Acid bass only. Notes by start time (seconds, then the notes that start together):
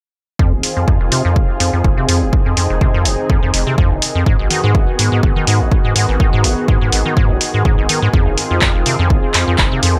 0.39 F2
0.52 F1
0.77 F2
0.88 F2
1.01 F1
1.12 C3
1.25 F2
1.36 F1
1.60 F2
1.73 F2
1.84 F1
1.97 C3
2.09 F2
2.22 F1
2.46 F2
2.57 F2
2.70 F1
2.81 C3
2.94 F2
3.05 F1
3.30 F2
3.43 F2
3.54 F1
3.67 C3
3.78 F2
3.91 F1
4.15 F2
4.26 G#2
4.39 G#1
4.50 D#3
4.64 G#2
4.75 G#1
4.99 G#2
5.12 G#2
5.23 G#1
5.36 D#3
5.47 G#2
5.60 G#1
5.84 G#2
5.96 G#2
6.09 G#1
6.20 D#3
6.33 G#2
6.44 G#1
6.68 G#2
6.81 G#2
6.93 G#1
7.06 D#3
7.17 G#2
7.30 G#1
7.54 G#2
7.65 G#2
7.78 G#1
7.89 D#3
8.02 G#2
8.13 F2
8.26 F1
8.51 F2
8.75 F1
8.86 C3
8.99 F2
9.10 F1
9.34 F2
9.47 F2
9.59 F1
9.72 C3
9.83 F2
9.96 F1